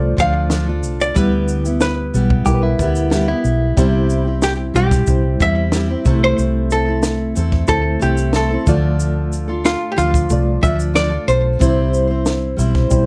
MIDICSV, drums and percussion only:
0, 0, Header, 1, 2, 480
1, 0, Start_track
1, 0, Key_signature, 0, "major"
1, 0, Tempo, 652884
1, 855, Time_signature, 4, 2, 24, 8
1, 9602, End_track
2, 0, Start_track
2, 0, Title_t, "Drums"
2, 135, Note_on_c, 9, 36, 98
2, 137, Note_on_c, 9, 82, 49
2, 208, Note_off_c, 9, 36, 0
2, 210, Note_off_c, 9, 82, 0
2, 367, Note_on_c, 9, 38, 105
2, 373, Note_on_c, 9, 82, 59
2, 441, Note_off_c, 9, 38, 0
2, 446, Note_off_c, 9, 82, 0
2, 612, Note_on_c, 9, 82, 47
2, 686, Note_off_c, 9, 82, 0
2, 740, Note_on_c, 9, 82, 54
2, 813, Note_off_c, 9, 82, 0
2, 853, Note_on_c, 9, 82, 62
2, 854, Note_on_c, 9, 36, 113
2, 927, Note_off_c, 9, 82, 0
2, 928, Note_off_c, 9, 36, 0
2, 1090, Note_on_c, 9, 82, 54
2, 1164, Note_off_c, 9, 82, 0
2, 1215, Note_on_c, 9, 82, 44
2, 1288, Note_off_c, 9, 82, 0
2, 1328, Note_on_c, 9, 38, 120
2, 1328, Note_on_c, 9, 82, 70
2, 1401, Note_off_c, 9, 82, 0
2, 1402, Note_off_c, 9, 38, 0
2, 1576, Note_on_c, 9, 82, 68
2, 1649, Note_off_c, 9, 82, 0
2, 1693, Note_on_c, 9, 36, 98
2, 1766, Note_off_c, 9, 36, 0
2, 1806, Note_on_c, 9, 82, 66
2, 1813, Note_on_c, 9, 36, 83
2, 1880, Note_off_c, 9, 82, 0
2, 1886, Note_off_c, 9, 36, 0
2, 2053, Note_on_c, 9, 36, 97
2, 2055, Note_on_c, 9, 82, 49
2, 2127, Note_off_c, 9, 36, 0
2, 2129, Note_off_c, 9, 82, 0
2, 2172, Note_on_c, 9, 82, 48
2, 2245, Note_off_c, 9, 82, 0
2, 2290, Note_on_c, 9, 38, 108
2, 2296, Note_on_c, 9, 82, 58
2, 2363, Note_off_c, 9, 38, 0
2, 2369, Note_off_c, 9, 82, 0
2, 2533, Note_on_c, 9, 82, 49
2, 2606, Note_off_c, 9, 82, 0
2, 2775, Note_on_c, 9, 36, 115
2, 2778, Note_on_c, 9, 82, 67
2, 2848, Note_off_c, 9, 36, 0
2, 2851, Note_off_c, 9, 82, 0
2, 3013, Note_on_c, 9, 82, 54
2, 3086, Note_off_c, 9, 82, 0
2, 3251, Note_on_c, 9, 38, 111
2, 3251, Note_on_c, 9, 82, 72
2, 3324, Note_off_c, 9, 38, 0
2, 3324, Note_off_c, 9, 82, 0
2, 3496, Note_on_c, 9, 82, 63
2, 3570, Note_off_c, 9, 82, 0
2, 3609, Note_on_c, 9, 38, 38
2, 3612, Note_on_c, 9, 36, 98
2, 3617, Note_on_c, 9, 82, 58
2, 3683, Note_off_c, 9, 38, 0
2, 3686, Note_off_c, 9, 36, 0
2, 3690, Note_off_c, 9, 82, 0
2, 3726, Note_on_c, 9, 82, 59
2, 3732, Note_on_c, 9, 36, 86
2, 3799, Note_off_c, 9, 82, 0
2, 3806, Note_off_c, 9, 36, 0
2, 3973, Note_on_c, 9, 36, 99
2, 3974, Note_on_c, 9, 82, 50
2, 4047, Note_off_c, 9, 36, 0
2, 4048, Note_off_c, 9, 82, 0
2, 4205, Note_on_c, 9, 38, 110
2, 4211, Note_on_c, 9, 82, 60
2, 4279, Note_off_c, 9, 38, 0
2, 4285, Note_off_c, 9, 82, 0
2, 4450, Note_on_c, 9, 82, 52
2, 4453, Note_on_c, 9, 36, 99
2, 4524, Note_off_c, 9, 82, 0
2, 4526, Note_off_c, 9, 36, 0
2, 4694, Note_on_c, 9, 82, 66
2, 4768, Note_off_c, 9, 82, 0
2, 4930, Note_on_c, 9, 82, 50
2, 5003, Note_off_c, 9, 82, 0
2, 5166, Note_on_c, 9, 82, 73
2, 5167, Note_on_c, 9, 38, 120
2, 5240, Note_off_c, 9, 38, 0
2, 5240, Note_off_c, 9, 82, 0
2, 5412, Note_on_c, 9, 82, 59
2, 5486, Note_off_c, 9, 82, 0
2, 5523, Note_on_c, 9, 38, 36
2, 5530, Note_on_c, 9, 36, 91
2, 5597, Note_off_c, 9, 38, 0
2, 5604, Note_off_c, 9, 36, 0
2, 5642, Note_on_c, 9, 82, 65
2, 5651, Note_on_c, 9, 36, 82
2, 5715, Note_off_c, 9, 82, 0
2, 5724, Note_off_c, 9, 36, 0
2, 5893, Note_on_c, 9, 82, 45
2, 5966, Note_off_c, 9, 82, 0
2, 6009, Note_on_c, 9, 82, 51
2, 6082, Note_off_c, 9, 82, 0
2, 6124, Note_on_c, 9, 38, 110
2, 6129, Note_on_c, 9, 82, 60
2, 6197, Note_off_c, 9, 38, 0
2, 6203, Note_off_c, 9, 82, 0
2, 6371, Note_on_c, 9, 82, 53
2, 6374, Note_on_c, 9, 36, 109
2, 6445, Note_off_c, 9, 82, 0
2, 6448, Note_off_c, 9, 36, 0
2, 6615, Note_on_c, 9, 82, 64
2, 6688, Note_off_c, 9, 82, 0
2, 6856, Note_on_c, 9, 82, 49
2, 6929, Note_off_c, 9, 82, 0
2, 7095, Note_on_c, 9, 38, 107
2, 7095, Note_on_c, 9, 82, 69
2, 7169, Note_off_c, 9, 38, 0
2, 7169, Note_off_c, 9, 82, 0
2, 7339, Note_on_c, 9, 82, 68
2, 7413, Note_off_c, 9, 82, 0
2, 7455, Note_on_c, 9, 36, 97
2, 7461, Note_on_c, 9, 82, 64
2, 7529, Note_off_c, 9, 36, 0
2, 7535, Note_off_c, 9, 82, 0
2, 7570, Note_on_c, 9, 82, 65
2, 7575, Note_on_c, 9, 36, 83
2, 7643, Note_off_c, 9, 82, 0
2, 7648, Note_off_c, 9, 36, 0
2, 7816, Note_on_c, 9, 36, 95
2, 7819, Note_on_c, 9, 82, 49
2, 7889, Note_off_c, 9, 36, 0
2, 7893, Note_off_c, 9, 82, 0
2, 7937, Note_on_c, 9, 82, 50
2, 8011, Note_off_c, 9, 82, 0
2, 8053, Note_on_c, 9, 38, 118
2, 8059, Note_on_c, 9, 82, 59
2, 8127, Note_off_c, 9, 38, 0
2, 8132, Note_off_c, 9, 82, 0
2, 8298, Note_on_c, 9, 82, 52
2, 8371, Note_off_c, 9, 82, 0
2, 8537, Note_on_c, 9, 36, 118
2, 8540, Note_on_c, 9, 82, 66
2, 8610, Note_off_c, 9, 36, 0
2, 8613, Note_off_c, 9, 82, 0
2, 8776, Note_on_c, 9, 82, 53
2, 8850, Note_off_c, 9, 82, 0
2, 9013, Note_on_c, 9, 38, 111
2, 9013, Note_on_c, 9, 82, 71
2, 9087, Note_off_c, 9, 38, 0
2, 9087, Note_off_c, 9, 82, 0
2, 9255, Note_on_c, 9, 82, 61
2, 9329, Note_off_c, 9, 82, 0
2, 9373, Note_on_c, 9, 36, 99
2, 9373, Note_on_c, 9, 38, 36
2, 9446, Note_off_c, 9, 38, 0
2, 9447, Note_off_c, 9, 36, 0
2, 9487, Note_on_c, 9, 82, 61
2, 9494, Note_on_c, 9, 36, 83
2, 9561, Note_off_c, 9, 82, 0
2, 9568, Note_off_c, 9, 36, 0
2, 9602, End_track
0, 0, End_of_file